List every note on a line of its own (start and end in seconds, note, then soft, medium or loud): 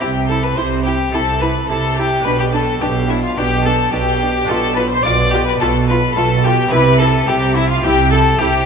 0.00 0.50 C2 medium
0.00 0.47 C3 medium
0.00 0.50 C3 medium
0.00 2.19 C4 medium
0.00 2.20 E4 medium
0.00 0.09 E4 medium
0.00 0.26 G4 medium
0.00 2.20 G4 medium
0.00 0.09 G4 medium
0.00 0.27 G5 loud
0.28 0.38 E4 medium
0.28 0.43 A4 medium
0.28 0.45 A4 medium
0.28 0.43 A5 medium
0.42 0.56 B4 medium
0.42 0.59 B4 medium
0.42 0.57 B5 medium
0.56 1.06 C2 medium
0.56 1.03 C3 medium
0.56 1.07 C3 medium
0.56 0.65 E4 medium
0.56 0.84 C5 medium
0.56 0.85 C5 medium
0.56 0.65 C6 loud
0.84 0.94 E4 medium
0.84 1.12 G4 medium
0.84 1.16 G4 medium
0.84 0.94 G5 loud
1.12 1.62 C2 medium
1.12 1.59 C3 medium
1.12 1.62 C3 medium
1.12 1.22 E4 medium
1.12 1.40 A4 medium
1.12 1.43 A4 medium
1.12 1.41 A5 loud
1.40 1.50 E4 medium
1.40 1.68 B4 medium
1.40 1.69 B4 medium
1.40 1.69 B5 loud
1.68 2.18 C2 medium
1.68 2.18 C3 medium
1.68 2.16 C3 medium
1.68 1.78 E4 medium
1.68 1.96 A4 medium
1.68 1.97 A4 medium
1.68 1.97 A5 medium
1.96 2.06 E4 medium
1.96 2.25 G4 medium
1.96 2.25 G5 loud
2.20 4.42 D4 medium
2.20 4.43 G4 medium
2.25 2.75 B1 medium
2.25 2.71 B2 medium
2.25 2.75 B2 medium
2.25 2.34 D4 medium
2.25 2.30 B4 loud
2.25 2.39 B4 loud
2.25 2.39 B5 loud
2.38 2.52 G4 medium
2.38 2.45 G4 medium
2.38 2.54 G5 loud
2.52 2.61 D4 medium
2.52 2.80 A4 medium
2.52 2.83 A4 medium
2.52 2.61 A5 loud
2.81 3.31 B1 medium
2.81 3.31 B2 medium
2.81 3.28 B2 medium
2.81 2.89 D4 medium
2.81 3.09 G4 medium
2.81 3.12 G4 medium
2.81 2.89 G5 loud
3.08 3.18 D4 medium
3.08 3.23 E4 medium
3.08 3.24 E4 medium
3.08 3.15 E5 medium
3.23 3.37 F4 medium
3.23 3.39 F4 medium
3.23 3.38 F5 medium
3.37 3.87 B1 medium
3.37 3.86 B2 medium
3.37 3.84 B2 medium
3.37 3.46 D4 medium
3.37 3.64 G4 medium
3.37 3.68 G4 loud
3.37 3.64 G5 loud
3.65 3.74 D4 medium
3.65 3.93 A4 medium
3.65 3.92 A4 medium
3.65 3.93 A5 loud
3.93 4.42 B1 medium
3.93 4.42 B2 medium
3.93 4.39 B2 medium
3.93 4.01 D4 medium
3.93 4.50 G4 medium
3.93 4.48 G4 medium
3.93 4.49 G5 loud
4.21 4.29 D4 medium
4.45 6.66 D4 medium
4.45 6.67 F4 medium
4.45 6.68 G4 medium
4.45 4.77 A5 loud
4.49 4.98 B1 medium
4.49 4.95 B2 medium
4.49 4.98 B2 medium
4.49 4.57 F4 medium
4.49 4.76 A4 loud
4.49 4.77 A4 loud
4.76 4.85 F4 medium
4.76 4.90 B4 medium
4.76 4.89 B4 medium
4.76 4.91 B5 loud
4.90 5.05 C5 loud
4.90 4.96 C5 medium
4.90 5.05 C6 loud
5.03 5.54 B1 loud
5.03 5.54 B2 medium
5.03 5.51 B2 medium
5.03 5.13 F4 medium
5.03 5.33 D5 loud
5.03 5.32 D5 medium
5.03 5.14 D6 loud
5.31 5.41 F4 medium
5.31 5.45 G4 medium
5.31 5.47 G4 loud
5.31 5.39 G5 loud
5.46 5.60 B4 medium
5.46 5.54 B5 loud
5.59 6.10 B1 medium
5.59 6.10 B2 medium
5.59 6.07 B2 medium
5.59 5.69 F4 medium
5.59 5.87 A4 medium
5.59 5.69 A4 loud
5.59 5.69 A5 loud
5.88 5.97 F4 medium
5.88 5.96 B4 medium
5.88 6.15 B4 medium
5.88 6.16 B5 loud
6.16 6.66 B1 medium
6.16 6.66 B2 medium
6.16 6.63 B2 medium
6.16 6.25 F4 medium
6.16 6.46 A4 medium
6.16 6.44 A4 medium
6.16 6.45 A5 loud
6.44 6.53 F4 medium
6.44 6.72 G4 medium
6.44 6.73 G4 loud
6.44 6.73 G5 loud
6.68 8.66 C4 medium
6.68 8.66 E4 medium
6.68 8.66 G4 medium
6.68 6.99 B4 loud
6.68 7.01 B4 loud
6.72 7.21 C2 medium
6.72 7.21 C3 loud
6.72 7.19 C3 medium
6.72 6.81 E4 medium
6.72 7.00 B5 loud
7.00 7.08 E4 medium
7.00 7.29 A4 medium
7.00 7.28 A4 medium
7.00 7.28 A5 loud
7.27 7.77 C2 loud
7.27 7.77 C3 loud
7.27 7.74 C3 medium
7.27 7.36 E4 medium
7.27 7.55 G4 medium
7.27 7.56 G4 loud
7.27 7.56 G5 loud
7.56 7.70 E4 medium
7.56 7.64 E4 medium
7.56 7.70 E4 loud
7.56 7.70 E5 loud
7.70 7.84 F4 medium
7.70 7.86 F4 medium
7.70 7.84 F5 loud
7.83 8.33 C2 loud
7.83 8.33 C3 medium
7.83 8.30 C3 medium
7.83 7.92 E4 medium
7.83 8.11 G4 loud
7.83 8.12 G4 loud
7.83 8.11 G5 loud
8.12 8.20 E4 medium
8.12 8.20 A4 medium
8.12 8.40 A4 loud
8.12 8.39 A5 loud
8.39 8.66 C2 medium
8.39 8.66 C3 medium
8.39 8.48 E4 medium
8.39 8.66 G4 medium
8.39 8.66 G4 loud
8.39 8.66 G5 loud